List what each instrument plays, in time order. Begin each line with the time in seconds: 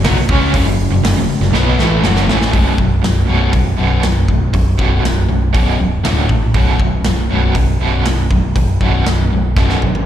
0.03 picked electric bass B1, overdriven electric guitar B2 F#3, snare, open hi-hat
0.16 muted picked electric bass stroke, muted distorted electric guitar stroke, muted overdriven electric guitar stroke
0.29 picked electric bass C#2, overdriven electric guitar C#3 G#3, kick
0.34 overdriven electric guitar C#4
0.54 picked electric bass F#1, overdriven electric guitar F#2 C#3, kick, open hi-hat
0.66 picked electric bass F#1, overdriven electric guitar F#2 C#3
0.90 picked electric bass F#1, overdriven electric guitar F#2 C#3
1.04 picked electric bass F#1, overdriven electric guitar F#2 C#3, snare, open hi-hat
1.16 picked electric bass F#1, overdriven electric guitar F#2 C#3
1.28 muted picked electric bass stroke, muted distorted electric guitar stroke, muted overdriven electric guitar stroke
1.40 picked electric bass F#1, overdriven electric guitar F#2 C#3, snare
1.51 picked electric bass B1, snare
1.55 overdriven electric guitar B2 F#3 B3
1.78 picked electric bass A1, overdriven electric guitar A2 E3 A3, snare
2.02 picked electric bass F#1, overdriven electric guitar F#2 C#3, snare
2.06 overdriven electric guitar F#3
2.16 snare
2.26 picked electric bass A1, overdriven electric guitar A2 E3, snare
2.31 overdriven electric guitar A3
2.42 snare
2.53 picked electric bass B0, overdriven electric guitar B1 F#2 B2, kick, open hi-hat
2.78 picked electric bass B0, overdriven electric guitar B1 F#2, kick
3.04 picked electric bass B0, overdriven electric guitar B1 F#2, snare, open hi-hat
3.28 picked electric bass B0, overdriven electric guitar B1 F#2 B2
3.53 picked electric bass B0, overdriven electric guitar B1 F#2, kick, open hi-hat
3.78 picked electric bass B0, overdriven electric guitar B1 F#2 B2
4.03 picked electric bass B0, overdriven electric guitar B1 F#2, snare, open hi-hat
4.28 picked electric bass B0, overdriven electric guitar B1 F#2, kick
4.54 picked electric bass B0, overdriven electric guitar B1 F#2, kick, open hi-hat
4.78 picked electric bass B0, overdriven electric guitar B1 F#2 B2, kick
5.04 picked electric bass B0, overdriven electric guitar B1 F#2, snare, open hi-hat
5.29 picked electric bass B0, overdriven electric guitar B1 F#2
5.53 picked electric bass B0, overdriven electric guitar B1 F#2 B2, kick, open hi-hat
5.80 picked electric bass C#1, overdriven electric guitar B1 F#2
6.03 picked electric bass D1, overdriven electric guitar D2 A2 D3, snare, open hi-hat
6.29 picked electric bass A#1, overdriven electric guitar D2 A2, kick
6.54 picked electric bass B0, overdriven electric guitar B1 F#2 B2, kick, open hi-hat
6.79 picked electric bass B0, overdriven electric guitar B1 F#2, kick
7.04 picked electric bass B0, overdriven electric guitar B1 F#2, snare, open hi-hat
7.31 picked electric bass B0, overdriven electric guitar B1 F#2 B2
7.55 picked electric bass B0, overdriven electric guitar B1 F#2, kick, open hi-hat
7.81 picked electric bass B0, overdriven electric guitar B1 F#2 B2
8.05 picked electric bass B0, overdriven electric guitar B1 F#2, snare, open hi-hat
8.31 picked electric bass B0, overdriven electric guitar B1 F#2, kick
8.55 picked electric bass B0, overdriven electric guitar B1 F#2, kick, open hi-hat
8.81 picked electric bass B0, overdriven electric guitar B1 F#2 B2, kick
9.06 picked electric bass B0, overdriven electric guitar B1 F#2, snare, open hi-hat
9.33 picked electric bass B0, overdriven electric guitar B1 F#2
9.56 picked electric bass B0, overdriven electric guitar B1 F#2 B2, kick, snare
9.69 snare
9.82 picked electric bass G#1, overdriven electric guitar B1 F#2, high tom
9.95 high tom